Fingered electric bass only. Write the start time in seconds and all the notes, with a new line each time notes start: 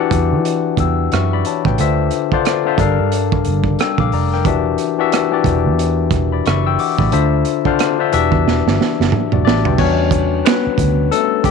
0.12 E2
0.33 E3
0.78 E2
1.13 F#2
1.66 A1
1.79 D2
2.79 G1
2.99 G2
3.46 G1
3.99 A#1
4.13 F1
4.46 E1
5.45 E1
5.66 E2
6.12 E1
6.47 F#1
6.99 A1
7.13 D2
8.13 E1
8.33 E2
8.47 E1
8.67 G1
9.00 F#1
9.34 E1
9.47 A1
9.67 B1
9.79 E2
10.67 muted fingered electric bass stroke
10.79 D2